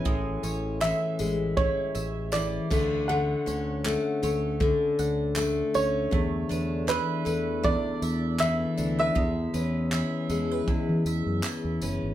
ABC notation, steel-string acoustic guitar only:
X:1
M:4/4
L:1/8
Q:"Swing 16ths" 1/4=79
K:A
V:1 name="Steel-string acoustic guitar" clef=bass
A,, C E, G, A,,2 E, D, | D, C A, A, D,2 A, C | E,, D E, A, E,,2 E, D | E,, C E, G, E,,2 E, C |]